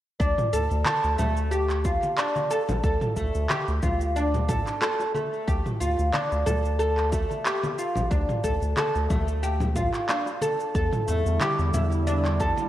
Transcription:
0.20 D2 D4, kick, cabasa
0.38 mid tom, cabasa
0.53 D2 A4, cabasa
0.71 D2, cabasa
0.85 A4, clap, high conga, cabasa
1.04 D2, cabasa
1.18 D2 A3, low conga, cabasa
1.37 cabasa
1.51 G4, cabasa
1.70 clap, cabasa
1.85 F4, kick, high bongo, cabasa
2.03 high conga, cabasa
2.18 D4, clap, cabasa
2.36 high conga, cabasa
2.51 A4, cabasa
2.69 A1, low conga, cabasa
2.84 D2 A4, kick, cabasa
3.01 mid tom, cabasa
3.17 D2 A3, kick, cabasa
3.35 D2, cabasa
3.50 G4, clap, high conga, cabasa
3.68 D2, cabasa
3.83 D2 F4, kick, high bongo, high conga, low conga, cabasa
4.01 cabasa
4.16 D4, cabasa
4.34 low conga, cabasa
4.48 A4, kick, mid tom, high bongo, cabasa
4.67 clap, cabasa
4.81 A4, clap, high bongo, cabasa
5.00 high bongo, cabasa
5.14 A3, high conga, cabasa
5.33 cabasa
5.47 D2 G4, kick, cabasa
5.66 mid tom, cabasa
5.80 D2 F4, cabasa
5.99 D2, cabasa
6.13 D4, clap, high conga, cabasa
6.32 D2, cabasa
6.46 D2 A4, low conga, cabasa
6.65 cabasa
6.79 A4, cabasa
6.97 clap, cabasa
7.12 A3, kick, high bongo, cabasa
7.31 high conga, cabasa
7.45 G4, clap, cabasa
7.64 high conga, cabasa
7.79 F4, cabasa
7.96 A1, low conga, cabasa
8.11 D2 D4, kick, cabasa
8.29 mid tom, cabasa
8.44 D2 A4, kick, cabasa
8.62 D2, cabasa
8.77 A4, clap, high conga, cabasa
8.95 D2, cabasa
9.10 D2 A3, kick, high bongo, high conga, low conga, cabasa
9.28 cabasa
9.43 G4, cabasa
9.61 low conga, cabasa
9.76 F4, kick, mid tom, high bongo, cabasa
9.94 clap, cabasa
10.09 D4, clap, high bongo, cabasa
10.26 high bongo, cabasa
10.42 A4, high conga, cabasa
10.60 cabasa
10.75 E2 D3 G3 E4 A4, kick, cabasa
10.93 mid tom, cabasa
11.08 E2 A3, cabasa
11.26 E2, cabasa
11.41 G4, clap, high conga, cabasa
11.59 E2, cabasa
11.74 E2 E4, low conga, cabasa
11.92 cabasa
12.07 D4, cabasa
12.25 clap, cabasa
12.39 A4, kick, high bongo, cabasa
12.57 high conga, cabasa

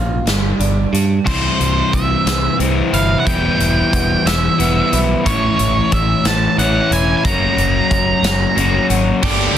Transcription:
Already playing: A#1 A#2 C#4 F4
0.26 G1 G3, snare, closed hi-hat
0.59 G1 D4, closed hi-hat
0.93 G2 G3, closed hi-hat
1.25 C2 C3 E3 G3 C4 E4 C5, kick, crash
1.60 C2, closed hi-hat
1.92 C2 C4 E5, kick, closed hi-hat
2.26 C2 E3, snare, closed hi-hat
2.58 C2 C3 E3 G3 C4 E4, closed hi-hat
2.93 G1 E4 F5, closed hi-hat
3.20 F#5
3.24 E1 E2 E3 G3 B3 E4 G5, kick, closed hi-hat
3.59 E1, closed hi-hat
3.93 E1 B3, kick, closed hi-hat
4.26 E1 E3 E5, snare, closed hi-hat
4.58 E1 E3 G3 B3 E4, closed hi-hat
4.92 B1 E4, closed hi-hat
5.24 A1 A2 E3 A3 C#4 E4 C#5, kick, closed hi-hat
5.59 A1, closed hi-hat
5.92 A1 C#4 E5, kick, closed hi-hat
6.25 A1 E3 A5, snare, closed hi-hat
6.58 A1 A2 E3 A3 C#4 F#5, closed hi-hat
6.62 E4
6.91 E1 E4 G#5, closed hi-hat
7.17 G#5
7.24 F#1 F#2 F#3 A#3 C#4 F#4 A#5, kick, closed hi-hat
7.57 F#1, closed hi-hat
7.91 F#1 C#4, kick, closed hi-hat
8.23 F#1 F#3, snare, closed hi-hat
8.55 F#1 F#3 A#3 C#4 F#4, closed hi-hat
8.89 G#1 F#4, closed hi-hat
9.22 G1 G2 D3 G3 A#3 D4 G4 G5, kick, crash

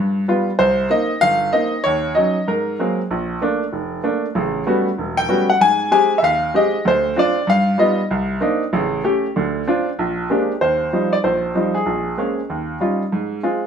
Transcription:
Already playing: G2
0.28 G3 B3 F4
0.59 C2 C5
0.90 A#3 C4 D#4 D#5
1.21 G1 F5
1.53 A#3 C4 D#4 D#5
1.84 D#2 C#5
2.15 F#3 C#4 D#4 D#5
2.48 G#2 A#4
2.79 F#3 G#3 A#3 C4
3.11 A#1
3.42 A3 A#3 D4
3.73 F1
4.04 A3 A#3 D4
4.35 A1 C#3
4.67 G3 A3 B3 C#4 F#4
4.98 E1
5.17 G5
5.29 G3 A3 B3 C#4 F#4
5.50 F#5
5.61 G#2 G#5
5.91 G#3 C4 G4 G#5
6.18 E5
6.22 D#2 F5
6.54 G#3 C4 G4 D#5
6.85 D2 C5
7.16 C4 D4 F4 D5
7.47 G2 F5
7.78 G3 B3 D#4 F4 D#5
8.11 C2
8.41 A#3 C4 D4 D#4
8.73 A1 C#3
9.04 A3 C#4 G4
9.36 D2 D3
9.68 C4 D4 F4
9.99 A#1
10.30 G#3 A#3 C4 D4 G4
10.61 D#2 C5
10.93 F3 G3 C4 D#4
11.13 D5
11.24 A#1 C5
11.55 F3 G3 C4 D#4
11.74 G#4
11.86 A#1
12.18 G#3 A#3 C4 C#4
12.50 D#2
12.80 G3 C#4 D#4 F4
13.12 G#2
13.43 G#3 C4 F4

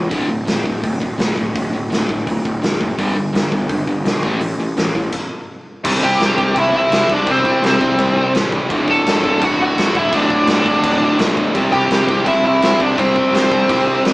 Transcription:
Already playing: E3
0.09 D1 D2 A2 D3, kick, open hi-hat
0.28 D1 D2 A2
0.45 D1 D2 A2, snare, open hi-hat
0.64 D1 D2 A2, kick
0.82 D1 D2 A2, kick, open hi-hat
1.00 D1 D2 A2, kick
1.18 D1 D2 A2, snare, open hi-hat
1.36 D1 D2 A2, kick
1.56 D1 D2 A2, kick, open hi-hat
1.74 D1 D2 A2
1.90 D1 D2 A2, snare, open hi-hat
2.09 D1 D2 A2, kick
2.27 D1 D2 A2, kick, open hi-hat
2.45 D1 D2 A2, kick
2.62 D1 D2 A2, snare, open hi-hat
2.81 F#1 D2 A2, kick
2.98 G1 G2 D3 G3, kick, open hi-hat
3.15 G1 G2 D3
3.33 G1 G2 D3, snare, open hi-hat
3.52 G1 G2 D3, kick
3.69 G1 G2 D3, kick, open hi-hat
3.87 G1 G2 D3, kick
4.04 B1 G2 D3, snare, open hi-hat
4.23 A1 A2 E3 A3, kick
4.40 A1 A2 E3, open hi-hat
4.58 A1 A2 E3
4.77 A1 A2 E3, snare, open hi-hat
4.94 A1 A2 E3, kick
5.12 kick, crash
5.84 C2 C3 G3 C4, kick, crash
6.02 C2 G4 G5, kick
6.19 C2, snare, crash
6.38 C2 C3 G3 C4, kick
6.56 C2 C3 G3 C4 E4 E5, kick, crash
6.74 C2 E4 E5
6.91 C2 C3 G3 C4, snare, crash
7.09 C2 D4 D5, kick
7.26 C2 C3 G3 C4, kick, crash
7.31 C5
7.44 C2, kick
7.62 C2, snare, crash
7.67 C4 C5
7.80 C2 C3 G3 C4, kick
7.98 C2 C3 G3 C4, kick, crash
8.33 A1 C3 G3 C4, snare, crash
8.52 kick
8.69 D1 D2 A2 D3, kick, crash
8.88 D1 A4 A5, kick
9.06 D1, snare, crash
9.23 D1 D2 A2 D3, kick
9.42 D1 D2 A2 D3 F#4 F#5, kick, crash
9.58 D1 F#4
9.63 F#5
9.76 D1 D2 A2 D3, snare, crash
9.95 D1 E4, kick
9.99 E5
10.11 D1 D2 A2 D3 D4, kick, crash
10.16 D5
10.30 D1, kick
10.47 D1, snare, crash
10.52 D4 D5
10.65 D1 D2 A2 D3, kick
10.83 D1 D2 A2 D3, kick, crash
11.18 B1 D2 A2 D3, snare, crash
11.37 kick
11.53 C2 C3 G3 C4, kick, crash
11.72 C2 G4 G5, kick
11.90 C2, snare, crash
12.08 C2 C3 G3 C4, kick
12.26 C2 C3 G3 C4 E4 E5, kick, crash
12.44 C2 E4 E5
12.61 C2 C3 G3 C4, snare, crash
12.80 C2 D4 D5, kick
12.96 C2 C3 G3 C4 C5, kick, crash
13.16 C2, kick
13.33 C2 C4 C5, snare, crash
13.50 C2 C3 G3 C4, kick
13.69 C2 C3 G3 C4, kick, crash
14.03 C2 C3 G3 C4, snare, crash

